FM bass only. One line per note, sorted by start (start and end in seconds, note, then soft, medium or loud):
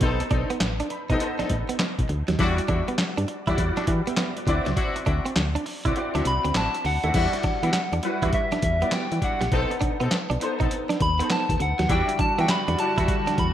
0.01 0.23 B1 loud
0.31 0.45 B1 loud
0.61 0.82 A1 medium
1.10 1.17 B1 medium
1.40 1.44 A1 soft
1.50 1.64 A1 loud
1.99 2.06 B1 medium
2.09 2.23 D2 loud
2.29 2.36 D#2 medium
2.39 2.60 E2 loud
2.69 2.83 E2 loud
3.18 3.25 G2 loud
3.47 3.55 E2 loud
3.58 3.72 E2 loud
3.88 4.02 E3 loud
4.47 4.61 D2 loud
4.67 4.74 C#2 medium
5.07 5.21 D2 loud
5.36 5.57 D2 loud
5.85 5.93 C2 medium
6.15 6.22 D2 medium
6.26 6.39 C2 loud
6.45 6.52 D2 medium
6.55 6.69 A1 medium
6.85 6.99 D2 loud
7.04 7.11 D#2 medium
7.14 7.28 E2 loud
7.44 7.52 E3 soft
7.63 7.70 E3 medium
7.92 8.00 E2 medium
8.22 8.30 E2 medium
8.63 8.84 E2 loud
9.12 9.19 E3 medium
9.41 9.49 A#1 medium
9.52 9.66 B1 loud
9.82 9.90 B2 medium
10.01 10.08 B2 medium
10.30 10.38 B1 loud
10.60 10.68 B1 medium
11.01 11.22 D#2 loud
11.49 11.57 D#2 medium
11.60 11.74 D2 loud
11.80 11.87 D#2 loud
11.89 12.03 E2 loud
12.19 12.27 E3 medium
12.39 12.46 E3 medium
12.68 12.76 E2 loud
12.98 13.05 E2 medium
13.38 13.54 E2 medium